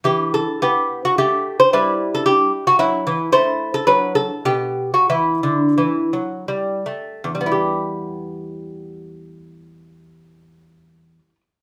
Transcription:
<<
  \new Staff \with { instrumentName = "Lute" } { \time 3/4 \key e \minor \tempo 4 = 91 << { g'8 a'8 g'8. fis'16 g'8. c''16 | b'8. a'16 g'8. fis'16 e'4 | c''8. a'16 b'8 a'8 g'8. fis'16 | e'2~ e'8 r8 |
<e, g b e' g'>2.~ | <e, g b e' g'>2. | } \\ { e'2. | e'2. | e'2 r4 | r2. |
r2. | r2. | } >> }
  \new Staff \with { instrumentName = "Lute" } { \clef bass \time 3/4 \key e \minor e4 b4 a4 | g2 fis8 e8 | a4 fis4 b,4 | e8 d8 e8 fis8 g8 a8 |
r2. | r2. | }
>>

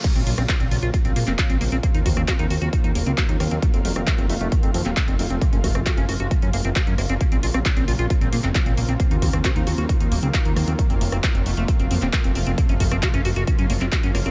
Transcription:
<<
  \new Staff \with { instrumentName = "Acid bass" } { \time 4/4 \key bes \minor \tempo 4 = 134 bes16 c'16 f'16 c'16 f'16 c'16 f'16 f'16 f'16 c'16 bes16 c'16 f'16 c'16 bes16 c'16 | bes16 ees'16 ges'16 c'16 ges'16 ees'16 ges'16 ges'16 ges'16 ees'16 bes16 c'16 ges'16 ees'16 bes16 c'16 | a16 c'16 a16 c'16 a16 c'16 a16 a16 a16 c'16 c'16 c'16 a16 c'16 c'16 c'16 | bes16 des'16 ges'16 c'16 ges'16 des'16 ges'16 ges'16 ges'16 des'16 bes16 c'16 ges'16 des'16 bes16 c'16 |
bes16 c'16 f'16 c'16 f'16 c'16 f'16 f'16 f'16 c'16 bes16 c'16 f'16 c'16 bes16 c'16 | bes16 ees'16 ges'16 c'16 ges'16 ees'16 ges'16 ges'16 ges'16 ees'16 bes16 c'16 ges'16 ees'16 bes16 c'16 | a16 c'16 a16 c'16 a16 c'16 a16 a16 a16 c'16 c'16 c'16 a16 c'16 c'16 c'16 | bes16 des'16 ges'16 c'16 ges'16 des'16 ges'16 ges'16 ges'16 des'16 bes16 c'16 ges'16 des'16 bes16 c'16 | }
  \new Staff \with { instrumentName = "Analog synth bass" } { \clef bass \time 4/4 \key bes \minor r16 bes,,16 bes,,16 bes,,16 r16 bes,,16 bes,,16 bes,,16 r16 bes,,16 bes,16 f,,16 r16 bes,,16 bes,,16 bes,,16 | r16 ees,16 ees,16 ees,16 r16 ees,16 ees,16 ees,16 r16 ees,16 ees,,16 des,16 r16 ees,16 ees,16 ees,16 | r16 f,,16 f,,16 f,,16 r16 f,,16 f,,16 f,,16 r16 f,,16 f,16 ees,,16 r16 f,,16 f,,16 f,,16 | r16 ges,,16 ges,,16 ges,,16 r16 ges,,16 ges,,16 ges,,16 r16 ges,16 ges,,16 ges,,16 r16 ges,16 ges,,16 ges,,16 |
r16 bes,,16 bes,,16 bes,,16 r16 bes,,16 bes,,16 bes,,16 r16 bes,,16 bes,16 f,,16 r16 bes,,16 bes,,16 bes,,16 | r16 ees,16 ees,16 ees,16 r16 ees,16 ees,16 ees,16 r16 ees,16 ees,,16 des,16 r16 ees,16 ees,16 ees,16 | r16 f,,16 f,,16 f,,16 r16 f,,16 f,,16 f,,16 r16 f,,16 f,16 ees,,16 r16 f,,16 f,,16 f,,16 | r16 ges,,16 ges,,16 ges,,16 r16 ges,,16 ges,,16 ges,,16 r16 ges,16 ges,,16 ges,,16 r16 ges,16 ges,,16 ges,,16 | }
  \new DrumStaff \with { instrumentName = "Drums" } \drummode { \time 4/4 <cymc hh bd>16 hh16 hho16 <hh ss>16 <hc hh bd>16 hh16 hho16 hh16 <hh bd>16 hh16 hho16 <hc hh>16 <hc hh bd>16 hh16 hho16 hh16 | <hh bd>16 hh16 <hho bd>16 <hh ss>16 <hc hh bd>16 hh16 hho16 hh16 <hh bd>16 hh16 hho16 hh16 <hc hh bd>16 hh16 <hho ss>16 hh16 | <hh bd>16 hh16 hho16 <hh ss>16 <hc hh bd>16 hh16 hho16 hh16 <hh bd>16 hh16 hho16 <hc hh>16 <hc hh bd>16 hh16 hho16 hh16 | <hh bd>16 hh16 <hho bd>16 <hh ss>16 <hc hh bd>16 hh16 hho16 hh16 <hh bd>16 hh16 hho16 hh16 <hc hh bd>16 hh16 <hho ss>16 hh16 |
<hh bd>16 hh16 hho16 <hh ss>16 <hc hh bd>16 hh16 hho16 hh16 <hh bd>16 hh16 hho16 <hc hh>16 <hc hh bd>16 hh16 hho16 hh16 | <hh bd>16 hh16 <hho bd>16 <hh ss>16 <hc hh bd>16 hh16 hho16 hh16 <hh bd>16 hh16 hho16 hh16 <hc hh bd>16 hh16 <hho ss>16 hh16 | <hh bd>16 hh16 hho16 <hh ss>16 <hc hh bd>16 hh16 hho16 hh16 <hh bd>16 hh16 hho16 <hc hh>16 <hc hh bd>16 hh16 hho16 hh16 | <hh bd>16 hh16 <hho bd>16 <hh ss>16 <hc hh bd>16 <hh ss>16 hho16 hh16 <hh bd>16 hh16 hho16 <hc hh>16 <hc hh bd>16 hh16 <hho ss>16 hh16 | }
>>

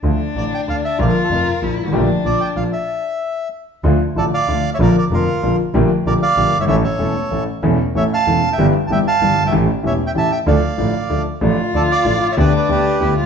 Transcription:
<<
  \new Staff \with { instrumentName = "Bandoneon" } { \time 3/4 \key d \minor \tempo 4 = 190 r4 d''8 g''8 f''8 e''8 | d''16 bes'8 a'16 bes'4. r8 | r4 d''8 g''8 f''8 e''8~ | e''2 r4 |
r4 <a' d''>8 <d'' f''>4~ <d'' f''>16 <cis'' e''>16 | <bes' d''>8 <bes' d''>8 <f' bes'>4. r8 | r4 <bes' d''>8 <d'' f''>4~ <d'' f''>16 <cis'' e''>16 | <cis'' e''>8 <a' cis''>2 r8 |
r4 <cis'' e''>8 <f'' a''>4~ <f'' a''>16 <e'' g''>16~ | <e'' g''>16 r8 r32 a''32 <e'' g''>8 <f'' a''>4~ <f'' a''>16 <e'' g''>16~ | <e'' g''>16 r8. \tuplet 3/2 { <cis'' e''>8. r16 <e'' g''>8 } <e'' a''>8 <e'' g''>8 | <d'' f''>2~ <d'' f''>8 r8 |
r4 <a' d''>8 <d'' f''>4~ <d'' f''>16 <cis'' e''>16 | <b' d''>8 <b' d''>8 <g' b'>4. r8 | }
  \new Staff \with { instrumentName = "Cello" } { \time 3/4 \key d \minor d'2. | f'2 e'4 | d'2. | r2. |
r2. | r2. | r2. | r2. |
r2. | r2. | r2. | r2. |
f'2. | d'2 e'8 f'8 | }
  \new Staff \with { instrumentName = "Grand piano" } { \clef bass \time 3/4 \key d \minor <d, d f a f'>8 r8 <a,, a,>8 r8 <d, d>8 r8 | <bes,, bes, d f bes f'>8 r8 <f,, f,>8 r8 <bes,, bes,>8 r32 g,,32 gis,,32 a,,32 | <bes,, bes, d a bes g'>8 r8 <bes,, bes,>8 r8 <bes,, bes,>8 r8 | r2. |
<d, d f a f'>8 r8 <a,, a, d f a f'>8 r8 <d, d f a f'>8 r8 | <bes,, bes, d f bes f'>8 r8 <f,, f, d f bes f'>8 r8 <bes,, bes, d f bes f'>8 r8 | <bes,, bes, d a bes g'>8 r8 <bes,, bes, d a bes g'>8 r8 <bes,, bes, d a bes g'>8 r32 fis,,32 g,,32 gis,,32 | <a,, a, e a cis' a'>8 r8 <e,, e, e a cis' a'>8 r8 <a,, a, e a cis' a'>8 r8 |
<e,, e, e a cis' a'>8 r8 <a,, a, e a cis' a'>8 r8 <e,, e, e a cis' a'>8 r8 | <g,, g, e g b g'>8 r8 <g,, g, e g b g'>8 r8 <g,, g, e g b g'>8 r32 fis,,32 g,,32 gis,,32 | <a,, a, e a cis' g'>8 r8 <e,, e, e a cis' g'>8 r8 <a,, a, e a cis' g'>8 r8 | <d, d f a d' a'>8 r8 <a,, a, f a d' a'>8 r8 <d, d f a d' a'>8 r8 |
<a,, a, f a d' a'>8 r8 <d, d f a d' a'>8 r8 <a,, a, f a d' a'>8 r8 | <d, d a b g'>8 r8 <d, d a b g'>8 r8 <d, d a b g'>8 r32 cis,32 r16 | }
  \new Staff \with { instrumentName = "Double bass" } { \clef bass \time 3/4 \key d \minor d,8 r8 a,,8 r8 d,8 r8 | bes,,8 r8 f,,8 r8 bes,,8 gis,,8 | bes,,8 r8 bes,,8 r8 bes,,8 r8 | r2. |
d,8 r8 a,,8 r8 d,8 r8 | bes,,8 r8 f,,8 r8 bes,,8 r8 | bes,,8 r8 bes,,8 r8 bes,,8 g,,8 | a,,8 r8 e,,8 r8 a,,8 r8 |
e,,8 r8 a,,8 r8 e,,8 r8 | g,,8 r8 g,,8 r8 g,,8 g,,8 | a,,8 r8 e,,8 r8 a,,8 r8 | d,8 r8 a,,8 r8 d,8 r8 |
a,,8 r8 d,8 r8 a,,8 r8 | d,8 r8 d,8 r8 d,8 d,8 | }
>>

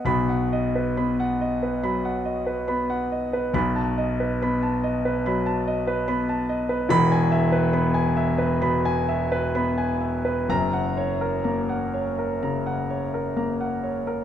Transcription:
<<
  \new Staff \with { instrumentName = "Grand piano" } { \time 4/4 \key fis \mixolydian \tempo 4 = 69 << { b''8 r2. r8 | b''8 r2. r8 | b''8 r2. r8 | ais''8 r2. r8 | } \\ { r16 fis''16 dis''16 b'16 b''16 fis''16 dis''16 b'16 b''16 fis''16 dis''16 b'16 b''16 fis''16 dis''16 b'16 | r16 a''16 dis''16 b'16 b''16 a''16 dis''16 b'16 b''16 a''16 dis''16 b'16 b''16 a''16 dis''16 b'16 | r16 gis''16 e''16 b'16 b''16 gis''16 e''16 b'16 b''16 gis''16 e''16 b'16 b''16 gis''16 e''16 b'16 | r16 fis''16 cis''16 ais'16 ais''16 fis''16 cis''16 ais'16 ais''16 fis''16 cis''16 ais'16 ais''16 fis''16 cis''16 ais'16 | } >> }
  \new Staff \with { instrumentName = "Grand piano" } { \clef bass \time 4/4 \key fis \mixolydian <b,, b,>4 b4 fis4 b4 | <b,, b,>4 b4 fis4 b4 | <e,, e,>4 b4 b,4 b4 | <fis,, fis,>4 ais4 cis4 ais4 | }
>>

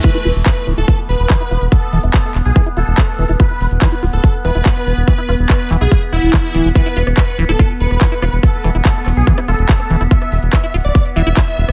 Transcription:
<<
  \new Staff \with { instrumentName = "Supersaw synth" } { \time 4/4 \key e \major \tempo 4 = 143 b'8 r8 b'8 r16 a'8 r16 b'4~ b'16 r16 | a'8 r8 a'8 r16 gis'8 r16 a'4~ a'16 r16 | b'8 r8 b'8 r16 a'8 r16 b'4~ b'16 r16 | b'8 r8 b'8 r16 gis'8 r16 e'4~ e'16 r16 |
b'8 r8 b'8 r16 a'8 r16 b'4~ b'16 r16 | a'8 r8 a'8 r16 gis'8 r16 a'4~ a'16 r16 | e''8 r8 e''8 r16 d''8 r16 e''4~ e''16 r16 | }
  \new Staff \with { instrumentName = "Acid bass" } { \time 4/4 \key e \major e16 e'16 f'16 r8. e16 e'16 f'16 r8. e16 e'16 f'16 r16 | r8 e16 e'16 f'16 r8. e16 e'16 f'16 r8. e16 e'16 | f'16 r8. e16 e'16 f'16 r8. e16 e'16 f'16 r8. | e16 e'16 f'16 r8. e16 e'16 f'16 r16 e'16 r16 e16 r16 e16 f16 |
e16 e'16 f'16 r8. e16 e'16 f'16 r8. e16 e'16 f'16 r16 | r8 e16 e'16 f'16 r8. e16 e'16 f'16 r8. e16 e'16 | f'16 r8. e16 e'16 f'16 r8. e16 e'16 f'16 r8. | }
  \new Staff \with { instrumentName = "Synth drone" } { \time 4/4 \key e \major b1~ | b1~ | b1~ | b1~ |
b1~ | b1~ | b1 | }
  \new Staff \with { instrumentName = "Analog synth bass" } { \clef bass \time 4/4 \key e \major r8 e,,16 e,,16 r8 d,,16 d,,16 r8 e,,16 e,,16 r8 e,,16 e,,16 | r8 e,,16 e,,16 r8 e,,16 b,,16 r8 e,,16 e,,16 r8 e,,16 e,,16 | r8 e,,16 e,,16 r8 d,,16 d,,16 r8 e,,16 e,,16 r8 e,,16 e,,16 | r8 e,,16 e,,16 r8 e,,16 b,,16 r8 e,,16 e,,16 r8 d,,16 e,,16 |
r8 e,,16 e,,16 r8 d,,16 d,,16 r8 e,,16 e,,16 r8 e,,16 e,,16 | r8 e,,16 e,,16 r8 e,,16 b,,16 r8 e,,16 e,,16 r8 e,,16 e,,16 | r8 e,,16 e,,16 r8 d,,16 d,,16 r8 e,,16 e,,16 r8 e,,16 e,,16 | }
  \new DrumStaff \with { instrumentName = "Drums" } \drummode { \time 4/4 <cymc hh bd>16 hh16 hho16 hh16 <hc hh bd>16 hh16 hho16 hh16 <hh bd>16 hh16 hho16 hh16 <hc hh bd>16 hh16 hho16 hh16 | <hh bd>16 hh16 hho16 hh16 <hc hh bd>16 hh16 <hc hho>16 hh16 <hh bd>16 hh16 hho16 hh16 <hc hh bd>16 hh16 hho16 hh16 | <hh bd>16 hh16 hho16 hh16 <hc hh bd>16 hh16 hho16 hh16 <hh bd>16 hh16 hho16 hh16 <hc hh bd>16 hh16 hho16 hh16 | <hh bd>16 hh16 hho16 hh16 <hc hh bd>16 hh16 <hc hho>16 hh16 <hh bd>16 hh16 hho16 hh16 <hc hh bd>16 hh16 hho16 hh16 |
<hh bd ss>16 hh16 hho16 <hh ss>16 <hc hh bd>16 hh16 hho16 <hh ss>16 <hh bd>16 hh16 hho16 <hh ss>16 <hc hh bd>16 hh16 <hho ss>16 hh16 | <hh bd>16 hh16 <hho ss>16 hh16 <hc hh bd>16 hh16 <hc hho ss>16 hh16 <hh bd>16 <hh ss>16 hho16 hh16 <hc hh bd>16 <hh ss>16 hho16 hh16 | <hh bd>16 <hh ss>16 hho16 hh16 <hc hh bd ss>16 hh16 hho16 hh16 <hh bd ss>16 hh16 hho16 hh16 <hc hh bd ss>16 hh16 hho16 <hh ss>16 | }
>>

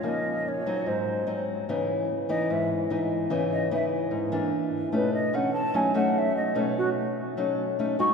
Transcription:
<<
  \new Staff \with { instrumentName = "Flute" } { \time 4/4 \key aes \mixolydian \tempo 4 = 147 ees''4 des''4 c''4. r8 | \key cis \minor r4. dis''8 e''8 r4. | r8 dis''8 e''8 r2 r8 | b'8 dis''8 fis''8 a''8 gis''8 fis''8 e''8 dis''8 |
cis''8 fis'8 r2 r8 cis'''8 | }
  \new Staff \with { instrumentName = "Nylon-string guitar" } { \time 4/4 \key aes \mixolydian << { <f bes ees'>4. <ges c' ees'>4. <ges c' ees'>4 | \key cis \minor <e b dis'>4 r8 <e b dis'>4. <e b dis'>4 | <e b dis'>4 <e b dis'>4. <e ais d'>4. | <a cis' dis'>8 r8 <a cis' dis'>8 r8 <a cis' dis'>8 <a cis' dis'>4. |
<a cis' dis'>2 <a cis' dis'>8 r8 <a cis' dis'>8 <gis dis' fis'>8 | } \\ { des2 aes,2 | cis2 gis,2 | cis2 gis,4 r4 | b,2 fis2 |
b,2 fis4 r4 | } >> }
>>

